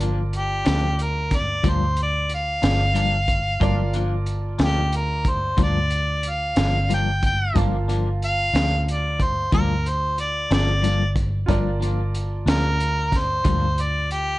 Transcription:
0.00 0.62 G1 loud
0.00 0.22 F3 soft
0.00 0.21 A#3 soft
0.00 0.20 D4 soft
0.00 3.57 F4 soft
0.00 3.58 A#4 soft
0.00 3.58 D5 medium
0.00 3.58 A5 soft
0.00 closed hi-hat medium
0.33 1.04 G4 medium
0.33 closed hi-hat soft
0.65 1.61 D2 medium
0.65 0.86 F3 soft
0.65 0.86 A#3 soft
0.65 0.85 D4 soft
0.65 snare loud
0.65 closed hi-hat medium
0.99 1.38 A#4 medium
0.99 closed hi-hat medium
1.31 kick medium
1.31 snare soft
1.31 closed hi-hat medium
1.36 1.71 D5 medium
1.64 2.59 D2 medium
1.64 1.84 G2 medium
1.64 1.84 F3 medium
1.64 1.85 A#3 medium
1.64 1.85 D4 medium
1.64 kick loud
1.64 closed hi-hat medium
1.69 1.99 C5 medium
1.97 closed hi-hat medium
2.03 2.32 D5 medium
2.29 closed hi-hat medium
2.35 4.25 F5 medium
2.62 3.58 G1 loud
2.62 2.84 F3 soft
2.62 2.83 A#3 soft
2.62 2.82 D4 soft
2.62 snare medium
2.62 closed hi-hat medium
2.94 3.15 G2 medium
2.94 3.15 F3 medium
2.94 3.16 A#3 medium
2.94 3.16 D4 medium
2.94 closed hi-hat medium
3.28 kick medium
3.28 closed hi-hat medium
3.60 4.56 G1 loud
3.60 3.81 G2 medium
3.60 3.81 F3 medium
3.60 3.81 A#3 medium
3.60 3.82 D4 medium
3.60 7.50 F4 medium
3.60 7.51 A#4 soft
3.60 7.52 D5 medium
3.60 7.51 A5 soft
3.60 kick loud
3.60 closed hi-hat medium
3.93 4.15 F3 soft
3.93 4.14 A#3 soft
3.93 4.14 D4 medium
3.93 closed hi-hat soft
4.26 closed hi-hat medium
4.58 5.54 D2 medium
4.58 4.80 F3 soft
4.58 4.80 A#3 soft
4.58 4.79 D4 medium
4.58 snare medium
4.58 closed hi-hat medium
4.64 4.98 G4 medium
4.92 5.31 A#4 medium
4.92 closed hi-hat medium
5.25 kick medium
5.25 closed hi-hat medium
5.30 5.59 C5 medium
5.57 6.53 D2 medium
5.57 5.77 G2 medium
5.57 5.78 F3 medium
5.57 5.78 A#3 medium
5.57 5.78 D4 medium
5.57 kick loud
5.57 closed hi-hat medium
5.63 6.31 D5 medium
5.90 closed hi-hat medium
6.23 closed hi-hat medium
6.29 6.90 F5 medium
6.56 7.51 G1 loud
6.56 6.78 F3 soft
6.56 6.77 A#3 soft
6.56 6.76 D4 soft
6.56 snare loud
6.56 closed hi-hat medium
6.89 7.09 G2 soft
6.89 7.09 F3 medium
6.89 7.09 A#3 medium
6.89 7.10 D4 medium
6.89 closed hi-hat medium
6.94 7.24 G5 medium
7.23 7.56 G5 medium
7.23 kick medium
7.23 closed hi-hat medium
7.54 8.50 G1 loud
7.54 7.75 G2 medium
7.54 7.76 F3 medium
7.54 7.75 A#3 medium
7.54 7.76 D4 medium
7.54 11.44 F4 soft
7.54 11.45 A#4 soft
7.54 11.45 F5 medium
7.54 11.45 A5 soft
7.54 kick medium
7.54 closed hi-hat medium
7.88 8.09 F3 soft
7.88 8.08 A#3 medium
7.88 8.08 D4 medium
7.88 closed hi-hat soft
8.22 8.87 F5 loud
8.22 closed hi-hat soft
8.54 9.48 D2 medium
8.54 8.74 F3 soft
8.54 8.74 A#3 soft
8.54 8.73 D4 soft
8.54 snare medium
8.54 closed hi-hat medium
8.88 9.24 D5 medium
8.88 closed hi-hat medium
9.20 9.53 C5 medium
9.20 kick medium
9.20 closed hi-hat medium
9.52 10.46 D2 medium
9.52 9.72 G2 medium
9.52 9.72 F3 medium
9.52 9.72 A#3 medium
9.52 9.73 D4 medium
9.52 9.90 A#4 medium
9.52 kick loud
9.52 closed hi-hat medium
9.86 10.18 C5 medium
9.86 closed hi-hat medium
10.18 10.51 D5 medium
10.18 closed hi-hat medium
10.51 11.45 G1 loud
10.51 10.71 F3 soft
10.51 10.70 A#3 soft
10.51 10.70 D4 medium
10.51 11.16 D5 medium
10.51 snare loud
10.51 closed hi-hat medium
10.82 11.02 G2 medium
10.82 11.03 F3 medium
10.82 11.03 A#3 medium
10.82 11.03 D4 medium
10.82 closed hi-hat medium
11.16 kick medium
11.16 closed hi-hat medium
11.46 12.43 G1 loud
11.46 11.68 G2 medium
11.46 14.39 F4 medium
11.46 14.39 A#4 medium
11.46 14.39 D5 medium
11.46 14.39 A5 medium
11.46 kick loud
11.46 closed hi-hat medium
11.50 11.69 F3 medium
11.50 11.69 A#3 medium
11.50 11.69 D4 medium
11.80 12.01 F3 soft
11.80 12.01 A#3 medium
11.80 12.00 D4 medium
11.80 closed hi-hat medium
12.15 closed hi-hat medium
12.46 13.41 D2 medium
12.46 12.67 F3 soft
12.46 12.67 A#3 soft
12.46 12.66 D4 soft
12.46 13.19 A#4 medium
12.46 snare loud
12.46 closed hi-hat medium
12.80 closed hi-hat medium
13.12 kick medium
13.12 snare soft
13.12 closed hi-hat medium
13.18 13.83 C5 medium
13.45 14.39 D2 medium
13.45 13.64 G2 medium
13.45 13.65 F3 medium
13.45 13.65 A#3 medium
13.45 13.66 D4 medium
13.45 kick loud
13.45 closed hi-hat medium
13.78 14.12 D5 medium
13.78 closed hi-hat medium
14.11 14.39 G4 medium
14.11 closed hi-hat medium

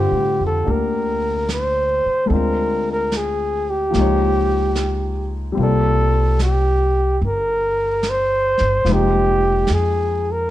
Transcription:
0.00 2.30 D3 soft
0.00 2.30 G3 soft
0.00 2.27 C4 soft
0.00 2.31 F4 soft
0.00 0.44 G4 medium
0.00 2.31 C5 medium
0.12 0.37 A2 soft
0.40 0.65 F2 medium
0.47 0.73 A4 medium
0.65 2.01 D2 medium
0.65 2.29 A#3 soft
0.65 2.29 D4 soft
0.65 2.30 G4 soft
0.65 2.30 A#4 soft
0.65 brush sweep soft
0.71 1.50 A#4 medium
1.49 snare soft
1.49 hi-hat pedal soft
1.53 2.29 C5 medium
2.06 muted upright bass stroke soft
2.26 3.92 G#3 soft
2.26 3.93 C4 soft
2.26 2.35 A4 medium
2.30 3.90 D2 medium
2.30 3.94 D4 soft
2.30 3.95 F4 soft
2.30 2.88 A#4 medium
2.30 brush sweep soft
2.36 3.97 C5 soft
2.92 3.19 A#4 medium
3.12 snare soft
3.12 hi-hat pedal soft
3.17 3.72 G#4 medium
3.71 5.33 G4 medium
3.90 5.56 F3 soft
3.90 5.57 A#3 soft
3.90 brush sweep soft
3.90 snare soft
3.95 5.54 C#2 medium
3.95 5.60 G#3 soft
3.95 5.58 D#4 soft
4.01 5.61 C#5 soft
4.75 snare soft
4.75 hi-hat pedal soft
5.52 8.83 G3 soft
5.52 8.84 C4 soft
5.57 7.17 C2 medium
5.57 8.84 A#3 soft
5.57 8.86 F4 soft
5.57 brush sweep soft
5.63 6.38 A4 medium
5.63 8.89 D5 soft
6.39 snare soft
6.39 hi-hat pedal soft
6.43 7.19 G4 medium
7.21 8.56 G1 medium
7.21 brush sweep soft
7.27 8.11 A#4 medium
8.03 snare soft
8.03 hi-hat pedal soft
8.09 8.94 C5 medium
8.58 8.84 G1 medium
8.58 snare soft
8.85 9.63 F1 medium
8.85 10.50 F3 soft
8.85 10.50 G#3 soft
8.85 10.50 A#3 soft
8.85 10.50 D#4 soft
8.85 brush sweep soft
8.85 snare soft
8.90 9.72 G4 medium
8.90 10.50 C5 soft
9.67 10.47 F2 medium
9.67 snare soft
9.67 hi-hat pedal soft
9.74 10.33 G#4 medium
10.32 10.50 A#4 medium

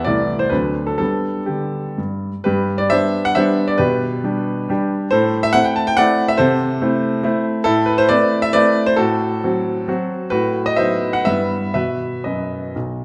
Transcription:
0.05 0.52 C2 medium
0.05 0.49 E3 soft
0.05 0.49 A3 soft
0.05 0.50 E4 soft
0.05 0.40 D5 medium
0.39 0.52 C5 medium
0.50 0.98 D2 medium
0.50 0.95 F#3 soft
0.50 0.96 C4 soft
0.50 0.96 D4 soft
0.50 0.87 B4 medium
0.87 0.96 A4 medium
0.98 1.34 G3 medium
0.98 1.39 B3 soft
0.98 1.39 D4 soft
0.98 1.48 A4 medium
1.46 1.83 D3 soft
1.46 1.97 G4 medium
1.98 2.31 G2 medium
2.44 2.90 G2 medium
2.44 2.77 G4 medium
2.44 2.79 B4 medium
2.78 2.90 D5 medium
2.90 3.33 G3 soft
2.90 3.33 B3 soft
2.90 3.33 D4 medium
2.90 3.23 C5 medium
2.90 3.25 E5 loud
3.25 3.36 F#5 loud
3.35 3.75 G3 medium
3.35 3.75 B3 medium
3.35 3.76 D4 medium
3.35 3.66 C5 medium
3.35 3.68 E5 loud
3.68 3.79 D5 medium
3.78 4.23 B2 medium
3.78 4.23 G4 medium
3.78 4.91 B4 loud
4.24 4.66 G3 medium
4.24 4.66 D4 medium
4.24 4.66 G4 medium
4.69 5.08 G3 medium
4.69 5.08 D4 medium
4.69 5.08 G4 medium
5.11 5.54 A2 medium
5.11 5.42 A4 medium
5.11 5.43 C5 loud
5.43 5.55 E5 loud
5.53 5.94 A3 medium
5.53 5.94 C4 medium
5.53 5.94 E4 medium
5.53 5.65 F#5 loud
5.64 5.76 G5 medium
5.76 5.87 A5 medium
5.87 5.98 G5 loud
5.97 6.35 A3 medium
5.97 6.36 C4 medium
5.97 6.36 E4 medium
5.97 6.27 D5 medium
5.97 6.28 F#5 loud
6.28 6.39 E5 loud
6.37 6.80 C3 medium
6.37 7.40 A4 medium
6.37 7.44 C5 loud
6.82 7.20 A3 medium
6.82 7.20 C4 medium
6.82 7.21 E4 medium
7.23 7.62 A3 medium
7.23 7.62 C4 medium
7.23 7.62 E4 medium
7.64 8.08 A2 medium
7.64 7.86 E4 medium
7.64 7.86 A4 loud
7.86 7.97 B4 medium
7.98 8.09 C5 loud
8.09 8.51 A3 medium
8.09 8.51 C4 medium
8.09 8.51 E4 medium
8.09 8.41 B4 medium
8.09 8.43 D5 loud
8.42 8.54 E5 loud
8.53 8.94 A3 medium
8.53 8.94 C4 medium
8.53 8.94 E4 medium
8.53 8.85 B4 medium
8.53 8.87 D5 loud
8.86 8.98 C5 loud
8.96 9.41 A2 medium
8.96 9.43 F#4 medium
8.96 10.09 A4 loud
9.44 9.84 F#3 medium
9.44 9.85 C4 medium
9.44 9.85 F#4 medium
9.88 10.28 F#3 medium
9.88 10.28 C4 medium
9.88 10.29 F#4 medium
10.30 10.77 A2 medium
10.30 10.64 F#4 medium
10.30 10.65 B4 loud
10.66 10.78 D#5 loud
10.76 11.23 F#3 soft
10.76 11.23 B3 soft
10.76 11.23 D#4 soft
10.76 11.12 C5 medium
10.76 11.14 E5 medium
11.13 11.26 F#5 medium
11.25 11.73 G2 medium
11.25 11.70 G3 soft
11.25 11.71 B3 soft
11.25 11.71 E4 soft
11.25 11.71 B4 medium
11.25 11.73 E5 medium
11.74 12.10 B2 medium
11.74 12.15 B3 soft
11.74 12.15 F#4 soft
11.74 12.21 B4 medium
11.74 12.24 E5 medium
12.24 12.60 F#2 medium
12.24 12.71 B4 soft
12.24 12.74 D#5 medium
12.76 13.05 B1 soft

